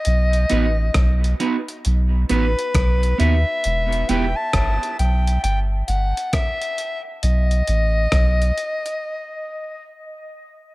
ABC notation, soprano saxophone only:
X:1
M:4/4
L:1/16
Q:"Swing 16ths" 1/4=67
K:Bphr
V:1 name="Soprano saxophone"
^d6 z4 B4 e2- | e2 g a3 g2 g2 f2 e3 z | ^d12 z4 |]